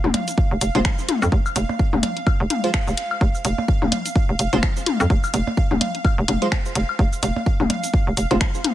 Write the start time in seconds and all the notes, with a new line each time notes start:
Already playing: F5
0.04 F1, high tom
0.14 closed hi-hat, percussion blips
0.28 closed hi-hat, cabasa
0.38 kick
0.51 F1
0.61 F1, closed hi-hat, cabasa
0.75 F1 G#3 F4 C5, closed hi-hat, high tom
0.85 finger snap, kick
0.99 cabasa
1.09 closed hi-hat, high tom
1.22 F2, cabasa, high woodblock
1.32 F1, kick
1.46 cabasa, high woodblock
1.56 F1, closed hi-hat, percussion blips, cabasa
1.69 percussion blips
1.79 kick
1.93 F1, high tom
2.03 closed hi-hat, percussion blips
2.17 closed hi-hat
2.27 kick, high woodblock
2.40 F1
2.50 closed hi-hat, high tom
2.64 G#3 F4 C5, closed hi-hat
2.74 finger snap, kick
2.87 F1, cabasa
2.97 closed hi-hat
3.11 high woodblock
3.21 F1, kick
3.35 cabasa
3.45 F1, closed hi-hat, percussion blips, cabasa
3.58 percussion blips
3.68 kick
3.82 F1, high tom
3.92 closed hi-hat, percussion blips
4.06 closed hi-hat, cabasa
4.16 kick
4.29 F1
4.39 F1, closed hi-hat, cabasa
4.53 F1 G#3 F4 C5, closed hi-hat, high tom
4.63 finger snap, kick
4.76 cabasa
4.86 closed hi-hat, high tom
5.00 F2, cabasa, high woodblock
5.10 F1, kick
5.24 cabasa, high woodblock
5.34 F1, closed hi-hat, percussion blips, cabasa
5.47 percussion blips
5.57 kick
5.71 F1, high tom
5.81 closed hi-hat, percussion blips
5.95 closed hi-hat
6.05 kick, high woodblock
6.18 F1
6.28 F1, closed hi-hat, high tom
6.42 G#3 F4 C5, closed hi-hat
6.52 finger snap, kick
6.65 cabasa
6.75 F1, closed hi-hat
6.89 high woodblock
6.99 F1, kick
7.13 cabasa
7.23 F1, closed hi-hat, percussion blips, cabasa
7.36 percussion blips
7.46 kick
7.60 F1, high tom
7.70 closed hi-hat, percussion blips
7.84 closed hi-hat, cabasa
7.94 kick
8.07 F1
8.17 F1, closed hi-hat, cabasa
8.31 F1 G#3 F4 C5, closed hi-hat, high tom
8.41 finger snap, kick
8.54 cabasa
8.64 closed hi-hat, high tom